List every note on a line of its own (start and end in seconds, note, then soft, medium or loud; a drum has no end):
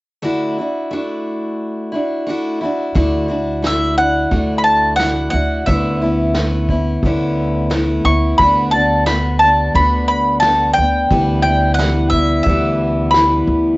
0.22 0.57 D3 medium
0.22 0.57 A3 medium
0.22 0.57 D4 medium
0.22 0.57 E4 medium
0.22 0.58 F#4 medium
0.58 0.92 D4 soft
0.58 0.92 E4 soft
0.58 0.92 F#4 soft
0.91 1.93 A3 soft
0.91 1.94 D4 soft
0.91 1.91 E4 soft
0.91 1.93 F#4 soft
1.92 2.27 D4 soft
1.92 2.27 E4 soft
1.92 2.28 F#4 soft
2.27 2.61 A3 medium
2.27 2.62 D4 soft
2.27 2.60 E4 medium
2.27 2.62 F#4 medium
2.61 2.95 D4 soft
2.61 2.95 E4 soft
2.61 2.95 F#4 soft
2.95 4.28 D2 medium
2.95 3.29 D3 medium
2.95 3.30 A3 medium
2.95 3.30 D4 medium
2.95 3.27 E4 medium
2.95 3.28 F#4 medium
2.95 kick medium
3.28 3.63 D4 soft
3.28 3.63 E4 soft
3.28 3.63 F#4 soft
3.62 3.97 A3 soft
3.62 3.98 D4 soft
3.62 3.98 E4 soft
3.62 3.98 F#4 soft
3.62 snare medium
3.66 3.97 E5 medium
3.98 4.31 D4 soft
3.98 4.32 E4 soft
3.98 4.31 F#4 soft
3.98 4.58 F#5 medium
4.31 5.30 D2 medium
4.31 5.00 D3 medium
4.31 4.97 A3 medium
4.31 4.99 D4 medium
4.31 5.00 E4 medium
4.31 5.00 F#4 medium
4.31 kick medium
4.58 4.63 B5 medium
4.64 4.95 A5 medium
4.96 5.33 A3 medium
4.96 5.34 D4 medium
4.96 5.29 F#5 medium
4.96 snare medium
5.01 5.31 E4 medium
5.01 5.32 F#4 soft
5.30 5.66 D2 medium
5.30 5.67 E4 soft
5.30 5.68 F#4 soft
5.30 5.67 F#5 medium
5.35 5.67 D4 soft
5.66 7.00 D2 medium
5.66 6.02 D3 medium
5.66 6.02 A3 medium
5.66 6.02 B3 medium
5.66 6.02 C#4 medium
5.66 6.00 E4 medium
5.66 6.99 E5 medium
5.66 kick medium
6.02 6.37 B3 soft
6.02 6.36 E4 soft
6.06 6.35 C#4 soft
6.35 6.69 A3 soft
6.35 6.71 B3 soft
6.35 6.70 C#4 soft
6.35 6.69 E4 medium
6.35 snare medium
6.69 7.05 B3 soft
6.69 7.04 E4 soft
6.69 kick soft
6.74 7.05 C#4 soft
7.03 8.01 D2 medium
7.03 7.72 D3 medium
7.03 7.69 A3 medium
7.03 7.73 B3 medium
7.03 7.71 C#4 medium
7.03 7.73 E4 medium
7.03 kick medium
7.70 8.05 A3 medium
7.70 8.06 B3 medium
7.70 8.06 C#4 medium
7.70 8.04 E4 medium
7.70 snare medium
8.05 8.38 D2 medium
8.05 8.39 B3 soft
8.05 8.40 E4 soft
8.05 8.38 C#6 medium
8.09 8.40 C#4 soft
8.38 9.71 D2 medium
8.38 8.73 D3 medium
8.38 8.74 B3 medium
8.38 8.74 D4 medium
8.38 8.71 B5 medium
8.38 kick medium
8.42 8.72 F#4 medium
8.71 9.07 D4 soft
8.71 9.07 F#4 soft
8.71 9.06 A5 medium
8.76 9.07 B3 soft
9.06 9.41 D3 soft
9.06 9.42 B3 soft
9.06 9.42 D4 medium
9.06 9.40 F#4 medium
9.06 9.39 B5 medium
9.06 snare medium
9.39 9.75 F#4 soft
9.39 9.72 A5 medium
9.43 9.75 B3 soft
9.43 9.76 D4 soft
9.74 10.73 D2 medium
9.74 10.43 D3 medium
9.74 10.44 B3 medium
9.74 10.44 D4 medium
9.74 10.45 F#4 medium
9.74 10.07 B5 medium
9.74 kick medium
10.08 10.39 B5 medium
10.40 10.73 A5 medium
10.40 snare medium
10.45 10.78 D3 medium
10.45 10.79 B3 medium
10.45 10.78 D4 medium
10.45 10.79 F#4 medium
10.73 11.39 G5 medium
10.77 11.10 D2 medium
10.77 11.11 B3 soft
10.77 11.12 D4 soft
11.10 12.43 D2 medium
11.10 11.45 D3 medium
11.10 11.46 E3 medium
11.10 11.45 G3 medium
11.10 11.45 B3 medium
11.10 11.44 E4 medium
11.10 kick medium
11.42 11.79 E4 soft
11.42 11.74 G5 medium
11.47 11.80 G3 soft
11.47 11.80 B3 soft
11.74 12.08 F#5 medium
11.79 12.14 E3 soft
11.79 12.14 G3 medium
11.79 12.14 B3 medium
11.79 snare medium
11.83 12.11 E4 medium
12.10 12.47 E4 soft
12.10 12.42 E5 medium
12.10 kick medium
12.15 12.48 G3 soft
12.15 12.48 B3 soft
12.43 13.44 D2 medium
12.43 13.15 E5 medium
12.43 kick medium
12.48 13.15 D3 medium
12.48 13.13 E3 medium
12.48 13.13 G3 medium
12.48 13.15 B3 medium
12.48 13.17 E4 medium
13.11 13.77 E3 soft
13.11 13.77 G3 soft
13.11 13.77 B5 medium
13.11 snare medium
13.16 13.77 B3 medium
13.16 13.77 E4 medium
13.47 13.77 D2 medium